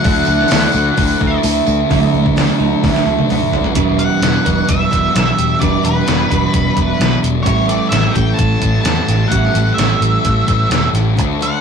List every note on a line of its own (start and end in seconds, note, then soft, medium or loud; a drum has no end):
0.00 1.88 D3 medium
0.00 1.89 F#3 medium
0.00 0.27 A3 medium
0.00 1.90 A3 medium
0.00 0.28 D4 medium
0.00 1.91 E4 medium
0.00 1.39 F#5 medium
0.00 tambourine soft
0.04 0.21 D2 loud
0.04 0.49 D3 medium
0.04 1.19 E3 medium
0.04 0.29 A3 loud
0.04 0.26 D4 loud
0.04 kick loud
0.04 open hi-hat medium
0.14 tambourine soft
0.25 0.44 D2 loud
0.25 1.42 A3 medium
0.25 0.51 D4 medium
0.25 tambourine medium
0.30 0.50 A3 medium
0.41 snare soft
0.48 0.68 D2 medium
0.48 0.95 D3 medium
0.48 0.74 A3 medium
0.48 0.96 D4 medium
0.48 snare loud
0.48 open hi-hat medium
0.48 tambourine loud
0.52 0.71 D4 medium
0.72 0.91 D2 medium
0.72 0.96 A3 medium
0.72 0.97 D4 medium
0.72 1.90 F#4 medium
0.72 tambourine medium
0.84 tambourine soft
0.96 1.14 D2 medium
0.96 1.41 D3 medium
0.96 1.21 A3 loud
0.96 1.89 D4 medium
0.96 1.18 D4 loud
0.96 kick loud
0.96 open hi-hat medium
1.08 tambourine medium
1.19 1.37 D2 medium
1.19 1.66 E3 medium
1.19 1.42 A3 medium
1.19 1.43 D4 medium
1.19 kick medium
1.19 tambourine soft
1.42 1.60 D2 medium
1.42 1.87 D3 medium
1.42 1.89 A3 medium
1.42 1.67 A3 medium
1.42 1.64 D4 medium
1.42 open hi-hat medium
1.42 tambourine medium
1.55 tambourine soft
1.65 1.84 D2 medium
1.65 1.89 E3 medium
1.65 1.89 A3 medium
1.65 1.88 D4 medium
1.65 tambourine medium
1.89 2.05 D2 medium
1.89 2.34 D3 medium
1.89 2.57 D3 medium
1.89 2.59 E3 medium
1.89 2.58 F#3 medium
1.89 2.36 A3 medium
1.89 2.58 A3 medium
1.89 2.37 D4 loud
1.89 2.57 E4 loud
1.89 kick loud
1.89 open hi-hat medium
2.14 2.28 D2 medium
2.14 3.29 F#4 medium
2.26 kick medium
2.35 2.51 D2 medium
2.35 3.27 D3 medium
2.35 3.06 A3 medium
2.35 3.05 D4 medium
2.35 3.04 D4 medium
2.35 snare loud
2.35 open hi-hat medium
2.58 2.74 D2 medium
2.58 3.74 D3 medium
2.58 3.28 E3 medium
2.58 3.74 F#3 medium
2.58 3.74 A3 medium
2.58 3.73 E4 medium
2.83 2.97 D2 medium
2.83 3.75 A3 medium
2.83 kick loud
2.83 snare medium
2.83 open hi-hat medium
2.96 snare medium
3.05 3.20 D2 medium
3.05 3.29 A3 medium
3.05 3.30 D4 medium
3.05 3.51 D4 medium
3.19 high tom medium
3.28 3.44 D2 medium
3.28 3.73 D3 medium
3.28 3.75 E3 medium
3.28 3.52 A3 medium
3.28 3.50 D4 medium
3.28 open hi-hat medium
3.28 mid tom medium
3.51 3.66 D2 medium
3.51 3.74 A3 soft
3.51 3.73 D4 medium
3.51 3.75 D4 medium
3.51 floor tom medium
3.64 floor tom medium
3.74 4.08 E1 medium
3.74 4.21 E2 medium
3.74 3.99 B2 medium
3.74 4.47 E3 medium
3.74 4.90 E3 medium
3.74 3.97 E3 medium
3.74 4.47 G3 medium
3.74 4.46 D4 medium
3.74 4.45 E4 medium
3.74 4.44 B4 medium
3.74 kick loud
3.74 closed hi-hat medium
3.98 4.22 B2 medium
3.98 4.24 E3 medium
3.98 5.36 G4 medium
3.98 4.70 F#5 medium
3.98 closed hi-hat medium
4.21 4.37 E1 medium
4.21 5.13 E2 medium
4.21 4.47 B2 medium
4.21 4.45 E3 medium
4.21 4.66 D4 medium
4.21 snare loud
4.21 closed hi-hat medium
4.45 4.62 E1 medium
4.45 4.93 B2 medium
4.45 4.91 E3 medium
4.45 5.60 E3 medium
4.45 5.60 G3 medium
4.45 5.61 B3 medium
4.45 5.60 D4 medium
4.45 5.62 E4 medium
4.45 5.59 B4 medium
4.45 kick medium
4.45 closed hi-hat medium
4.67 4.85 E1 medium
4.67 5.14 D4 medium
4.67 5.13 E5 medium
4.67 kick loud
4.67 closed hi-hat medium
4.91 5.08 E1 medium
4.91 5.14 B2 medium
4.91 5.59 E3 medium
4.91 5.16 E3 medium
4.91 kick medium
4.91 closed hi-hat medium
5.14 5.31 B1 medium
5.14 5.58 E2 medium
5.14 5.60 B2 medium
5.14 5.62 E3 medium
5.14 6.05 D4 medium
5.14 5.60 E5 medium
5.14 snare loud
5.14 closed hi-hat medium
5.37 5.54 E1 medium
5.37 5.83 G4 medium
5.37 closed hi-hat medium
5.59 5.77 E1 medium
5.59 6.04 E2 medium
5.59 5.84 B2 medium
5.59 6.76 E3 medium
5.59 6.31 E3 medium
5.59 5.82 E3 loud
5.59 6.31 G3 medium
5.59 6.29 D4 medium
5.59 6.29 E4 medium
5.59 6.27 B4 medium
5.59 5.84 D5 medium
5.59 kick medium
5.59 closed hi-hat medium
5.82 6.00 E1 medium
5.82 6.06 B2 medium
5.82 6.08 E3 medium
5.82 7.23 G4 medium
5.82 7.19 B4 medium
5.82 closed hi-hat medium
6.05 6.24 E1 medium
6.05 6.52 E2 medium
6.05 6.30 B2 medium
6.05 6.27 E3 medium
6.05 6.52 D4 medium
6.05 snare loud
6.05 closed hi-hat medium
6.28 6.47 E1 medium
6.28 6.76 B2 medium
6.28 6.74 E3 medium
6.28 7.43 E3 medium
6.28 7.44 G3 medium
6.28 7.46 B3 medium
6.28 7.44 D4 medium
6.28 7.45 E4 medium
6.28 7.44 B4 medium
6.28 kick medium
6.28 closed hi-hat medium
6.53 6.70 E1 loud
6.53 6.99 D4 medium
6.53 kick loud
6.53 closed hi-hat medium
6.74 6.93 E1 medium
6.74 6.97 B2 medium
6.74 7.00 E3 medium
6.74 7.46 E3 medium
6.74 kick medium
6.74 closed hi-hat medium
6.97 7.16 B1 medium
6.97 7.43 E2 medium
6.97 7.43 B2 medium
6.97 7.45 E3 medium
6.97 7.46 D4 medium
6.97 closed hi-hat medium
7.02 snare loud
7.23 7.47 E1 medium
7.23 7.69 G4 medium
7.23 closed hi-hat medium
7.43 7.78 A1 medium
7.43 8.15 A2 medium
7.43 7.90 A2 medium
7.43 8.14 E3 medium
7.43 7.69 E3 loud
7.43 8.60 E3 medium
7.43 8.14 G3 medium
7.43 8.13 C#4 medium
7.43 8.11 G4 medium
7.43 7.66 C#5 medium
7.43 kick loud
7.43 closed hi-hat medium
7.47 7.66 A3 medium
7.66 7.92 E3 medium
7.66 7.93 A3 medium
7.66 8.85 G4 medium
7.66 7.89 D5 medium
7.66 closed hi-hat medium
7.89 8.08 A1 medium
7.89 8.83 A2 medium
7.89 8.16 E3 medium
7.89 8.37 C#4 medium
7.89 8.15 E5 medium
7.89 snare loud
7.89 closed hi-hat loud
7.93 8.13 A3 medium
8.11 9.28 A2 medium
8.11 9.29 E3 medium
8.11 9.29 G3 medium
8.11 8.60 A3 medium
8.11 9.58 A3 medium
8.11 9.31 C#4 medium
8.11 9.28 G4 medium
8.11 8.37 G5 medium
8.15 8.32 A1 medium
8.15 8.62 E3 medium
8.15 kick medium
8.15 closed hi-hat medium
8.34 8.83 C#4 medium
8.34 8.80 A5 loud
8.39 8.55 A1 medium
8.39 kick loud
8.39 closed hi-hat medium
8.60 8.78 A1 medium
8.60 9.30 E3 medium
8.60 8.84 E3 medium
8.60 8.86 A3 medium
8.60 kick medium
8.60 closed hi-hat medium
8.81 9.01 E2 medium
8.81 9.28 A2 medium
8.81 9.78 C#4 medium
8.81 9.31 A5 medium
8.81 closed hi-hat loud
8.85 9.29 E3 medium
8.85 9.31 A3 medium
8.85 snare loud
9.08 9.24 A1 medium
9.08 9.54 G4 medium
9.08 snare soft
9.08 closed hi-hat medium
9.28 9.76 A2 medium
9.28 9.99 A2 medium
9.28 9.99 E3 medium
9.28 9.55 E3 medium
9.28 10.46 E3 medium
9.28 9.99 G3 medium
9.28 10.00 C#4 medium
9.28 9.74 F#5 medium
9.32 9.48 A1 medium
9.32 9.53 A3 loud
9.32 9.98 G4 loud
9.32 kick medium
9.32 closed hi-hat medium
9.45 snare soft
9.53 9.71 A1 medium
9.53 9.77 E3 medium
9.53 9.79 A3 medium
9.53 10.71 G4 medium
9.53 closed hi-hat medium
9.74 9.94 A1 medium
9.74 10.24 A2 medium
9.74 10.88 E5 medium
9.78 10.01 E3 medium
9.78 10.00 A3 medium
9.78 10.24 C#4 medium
9.78 snare loud
9.78 closed hi-hat medium
9.99 10.17 A1 medium
9.99 11.17 A2 medium
9.99 11.14 E3 medium
9.99 10.48 E3 medium
9.99 11.16 G3 medium
9.99 10.46 A3 medium
9.99 11.17 A3 medium
9.99 11.18 C#4 medium
9.99 11.15 G4 medium
9.99 closed hi-hat medium
10.24 10.41 A1 medium
10.24 10.70 C#4 medium
10.24 kick loud
10.24 closed hi-hat medium
10.47 10.64 A1 medium
10.47 11.17 E3 medium
10.47 10.69 E3 medium
10.47 10.71 A3 medium
10.47 kick medium
10.47 closed hi-hat medium
10.69 10.87 E1 medium
10.69 11.15 A2 medium
10.69 11.16 E3 medium
10.69 11.17 A3 medium
10.69 11.61 C#4 medium
10.69 snare loud
10.69 closed hi-hat medium
10.93 11.19 A1 medium
10.93 11.17 G4 medium
10.93 snare soft
10.93 closed hi-hat medium
11.15 11.61 D3 medium
11.15 11.61 A3 medium
11.15 11.42 A3 medium
11.15 11.39 D4 loud
11.15 11.61 F#4 medium
11.15 kick loud
11.15 closed hi-hat medium
11.19 11.50 D2 medium
11.39 11.61 A3 medium
11.39 11.61 D4 medium
11.39 11.61 F#4 medium
11.39 11.61 F#5 loud
11.39 closed hi-hat medium